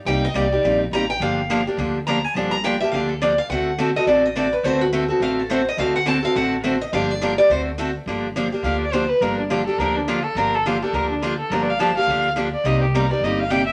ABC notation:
X:1
M:4/4
L:1/8
Q:"Swing" 1/4=210
K:Gm
V:1 name="Steel-string acoustic guitar"
g e d3 z b g | f3 z3 b _a | a b g =e f A d f | ^f3 e d e d =B |
c ^F z2 =f A c e | f ^f a =f ^f A c e | f d B d c z3 | z8 |
z8 | z8 | z8 | z8 |]
V:2 name="Violin"
z8 | z8 | z8 | z8 |
z8 | z8 | z8 | z4 f d c =B |
B D F A B D F A | B A F A B D F A | (3B d f a f2 z2 d | e G B d e f g =e |]
V:3 name="Steel-string acoustic guitar"
[C,G,B,EG] z [C,G,B,EG] [B,EG] [C,G,B,EG] z [C,G,B,EG] z | [D,F,B,DG] z [D,F,B,DG] [B,DG] [D,F,B,DG] z [D,F,B,DG] z | [D,F,B,DG] z [D,F,B,DG] [B,DG] [D,F,B,DG] z [D,F,B,DG] z | [D,A,C^FA] z [D,A,CFA] [CFA] [D,A,CFA] z [D,A,CFA] z |
[D,A,C^FA] z [D,A,CFA] [CFA] [D,A,CFA] z [D,A,CFA] z | [D,A,C^FA] z [D,A,CFA] [CFA] [D,A,CFA] z [D,A,CFA] z | [D,F,B,DG] z [D,F,B,DG] [B,DG] [D,A,C^FA] z [D,A,CFA] z | [D,F,B,DG] z [D,F,B,DG] [B,DG] [D,F,B,DG] z [D,F,B,DG] z |
[D,F,B,DG] z [D,F,B,DG] [B,DG] [D,F,B,DG] z [D,F,B,DG] z | [D,F,B,DG] z [D,F,B,DG] [B,DG] [D,F,B,DG] z [D,F,B,DG] z | [D,F,B,DG] z [D,F,B,DG] [B,DG] [D,F,B,DG] z [D,F,B,DG] z | [C,G,B,EG] z [C,G,B,EG] [B,EG] [C,G,B,EG] z [C,G,B,EG] z |]
V:4 name="Upright bass" clef=bass
C,,2 C,,2 B,,,2 A,,,2 | G,,,4 D,,4 | G,,,4 D,,4 | D,,4 A,,,4 |
D,,4 A,,,4 | D,,4 A,,,4 | G,,,4 D,,4 | G,,,4 D,,4 |
G,,,4 D,,4 | G,,,4 D,,4 | G,,,4 D,,4 | C,,4 G,,,4 |]